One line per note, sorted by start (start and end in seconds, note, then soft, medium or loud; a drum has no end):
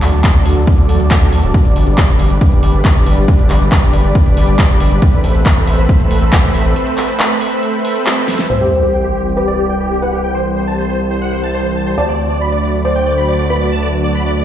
0.02 0.11 D2 medium
0.02 clap medium
0.02 open hi-hat loud
0.13 0.22 D2 medium
0.13 closed hi-hat soft
0.24 kick loud
0.24 clap loud
0.24 closed hi-hat medium
0.35 0.43 D2 medium
0.35 closed hi-hat soft
0.46 0.54 D2 loud
0.46 open hi-hat loud
0.56 0.65 D2 medium
0.56 closed hi-hat soft
0.67 kick loud
0.67 closed hi-hat medium
0.78 0.87 D2 medium
0.78 closed hi-hat soft
0.89 0.98 D2 medium
0.89 open hi-hat loud
1.00 1.09 D2 medium
1.00 closed hi-hat soft
1.11 kick loud
1.11 clap loud
1.11 closed hi-hat medium
1.22 1.30 D2 medium
1.22 closed hi-hat soft
1.32 1.41 D2 loud
1.32 open hi-hat loud
1.43 1.52 D1 medium
1.43 closed hi-hat soft
1.54 kick loud
1.54 closed hi-hat medium
1.65 1.74 G1 medium
1.65 closed hi-hat soft
1.76 1.85 G1 medium
1.76 open hi-hat medium
1.87 1.96 G1 medium
1.87 closed hi-hat soft
1.98 kick loud
1.98 clap loud
1.98 closed hi-hat medium
2.09 2.17 G1 medium
2.09 closed hi-hat soft
2.19 2.28 G1 loud
2.19 open hi-hat loud
2.30 2.39 G1 medium
2.30 closed hi-hat soft
2.41 kick loud
2.41 closed hi-hat medium
2.52 2.61 G1 medium
2.52 closed hi-hat soft
2.63 2.72 G1 loud
2.63 open hi-hat loud
2.74 2.82 G1 medium
2.74 closed hi-hat soft
2.85 kick loud
2.85 clap loud
2.85 closed hi-hat medium
2.96 3.04 G1 medium
2.96 closed hi-hat soft
3.06 3.15 G1 medium
3.06 open hi-hat loud
3.17 3.26 G1 medium
3.17 closed hi-hat soft
3.28 kick loud
3.28 closed hi-hat medium
3.39 3.48 G1 medium
3.39 closed hi-hat soft
3.50 3.59 G1 loud
3.50 clap medium
3.50 open hi-hat loud
3.61 3.69 G1 medium
3.61 closed hi-hat soft
3.72 kick loud
3.72 clap loud
3.72 closed hi-hat medium
3.83 3.91 G1 medium
3.83 closed hi-hat soft
3.93 4.02 G1 loud
3.93 open hi-hat medium
4.04 4.13 G1 medium
4.04 closed hi-hat soft
4.15 kick loud
4.15 closed hi-hat medium
4.26 4.35 G1 medium
4.26 closed hi-hat soft
4.37 4.46 G1 loud
4.37 open hi-hat loud
4.48 4.56 G1 medium
4.48 closed hi-hat soft
4.59 kick loud
4.59 clap loud
4.59 closed hi-hat medium
4.70 4.78 G1 medium
4.70 closed hi-hat soft
4.80 4.89 G1 loud
4.80 open hi-hat loud
4.91 5.00 G1 medium
4.91 closed hi-hat soft
5.02 kick loud
5.02 closed hi-hat medium
5.13 5.22 A1 medium
5.13 closed hi-hat soft
5.24 5.33 A1 loud
5.24 open hi-hat medium
5.35 5.43 A1 medium
5.35 closed hi-hat soft
5.46 kick loud
5.46 clap loud
5.46 closed hi-hat medium
5.57 5.65 A1 medium
5.57 closed hi-hat soft
5.67 5.76 A1 loud
5.67 open hi-hat medium
5.78 5.87 A1 medium
5.78 closed hi-hat soft
5.89 kick loud
5.89 closed hi-hat medium
6.00 6.09 A1 medium
6.00 closed hi-hat soft
6.11 6.19 A1 loud
6.11 open hi-hat loud
6.22 6.30 A1 medium
6.22 closed hi-hat soft
6.32 kick loud
6.32 clap loud
6.32 closed hi-hat medium
6.43 6.52 A1 medium
6.43 closed hi-hat soft
6.54 6.63 A1 loud
6.54 open hi-hat loud
6.65 6.74 A1 medium
6.65 closed hi-hat soft
6.76 closed hi-hat medium
6.87 closed hi-hat soft
6.98 clap medium
6.98 open hi-hat loud
7.09 closed hi-hat soft
7.19 clap loud
7.19 closed hi-hat medium
7.30 closed hi-hat soft
7.41 open hi-hat loud
7.52 closed hi-hat soft
7.63 closed hi-hat medium
7.74 closed hi-hat soft
7.85 open hi-hat loud
7.96 closed hi-hat soft
8.06 clap loud
8.06 closed hi-hat medium
8.17 closed hi-hat soft
8.28 snare medium
8.28 open hi-hat loud
8.39 snare medium
8.39 closed hi-hat soft
8.50 11.96 C2 medium
8.50 9.28 C5 medium
8.50 8.57 E5 medium
8.50 crash medium
8.50 sub drop medium
8.61 8.68 G4 medium
8.82 8.89 G4 medium
8.93 9.00 G5 medium
9.04 9.11 G4 medium
9.15 9.22 G4 medium
9.37 9.44 G4 medium
9.37 9.93 B4 medium
9.48 9.54 D5 medium
9.58 9.65 G4 medium
9.69 9.76 G5 medium
9.80 9.87 G4 medium
9.91 9.98 G4 medium
10.02 11.89 B4 medium
10.02 10.09 F#5 medium
10.13 10.20 G4 medium
10.24 10.31 G5 loud
10.35 10.41 C5 medium
10.56 10.63 C5 medium
10.67 10.74 A5 medium
10.78 10.85 C5 medium
10.89 10.96 C5 medium
11.11 11.18 C5 medium
11.22 11.28 F#5 medium
11.32 11.39 C5 medium
11.43 11.50 A5 medium
11.54 11.61 C5 medium
11.65 11.72 C5 medium
11.76 11.83 A5 medium
11.87 11.94 C5 medium
11.98 14.45 D2 medium
11.98 12.76 D5 medium
11.98 12.04 A5 medium
12.08 12.15 D5 medium
12.30 12.37 D5 medium
12.41 12.48 B5 medium
12.52 12.59 D5 medium
12.63 12.70 D5 medium
12.85 13.41 C5 medium
12.85 12.91 D5 medium
12.96 13.02 G5 medium
13.06 13.13 D5 medium
13.17 13.24 B5 medium
13.28 13.35 D5 medium
13.39 13.46 D5 medium
13.50 14.45 B4 medium
13.50 13.57 B5 medium
13.61 13.68 D5 medium
13.72 13.78 A5 medium
13.82 13.89 D5 medium
14.04 14.11 D5 medium
14.15 14.22 B5 medium
14.26 14.33 D5 medium
14.37 14.44 D5 medium